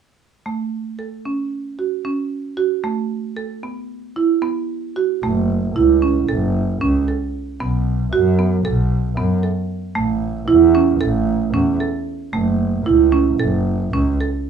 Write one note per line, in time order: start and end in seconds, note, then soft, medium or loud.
0.46 0.81 A3 medium
0.99 1.16 A4 medium
1.25 1.60 C#4 medium
1.79 1.96 F#4 soft
2.05 2.40 C#4 medium
2.57 2.75 F#4 medium
2.84 3.19 A3 medium
3.36 3.54 A4 medium
3.63 3.98 B3 medium
4.16 4.34 E4 medium
4.42 4.78 B3 medium
4.96 5.14 F#4 medium
5.23 5.66 F#1 medium
5.23 5.59 A3 medium
5.76 6.19 C#2 medium
5.76 5.94 E4 medium
6.02 6.20 C#4 medium
6.29 6.72 F#1 medium
6.29 6.64 A4 medium
6.81 7.04 C#2 medium
6.81 6.99 C#4 medium
7.08 7.43 A4 medium
7.60 8.04 B1 medium
7.60 7.96 B3 medium
8.13 8.56 F#2 medium
8.13 8.30 F#4 medium
8.39 8.57 B3 medium
8.65 9.08 B1 medium
8.65 9.00 A4 medium
9.17 9.40 F#2 medium
9.17 9.35 B3 medium
9.43 9.78 A4 medium
9.95 10.39 A1 medium
9.95 10.30 A3 medium
10.48 10.92 E2 medium
10.48 10.65 E4 medium
10.75 10.92 C#4 medium
11.01 11.44 A1 medium
11.01 11.36 A4 medium
11.54 11.75 E2 medium
11.54 11.71 C#4 medium
11.80 12.15 A4 medium
12.33 12.76 F#1 medium
12.33 12.68 A3 medium
12.86 13.29 C#2 medium
12.86 13.04 E4 medium
13.12 13.30 C#4 medium
13.40 13.83 F#1 medium
13.40 13.75 A4 medium
13.93 14.15 C#2 medium
13.93 14.11 C#4 medium
14.21 14.50 A4 medium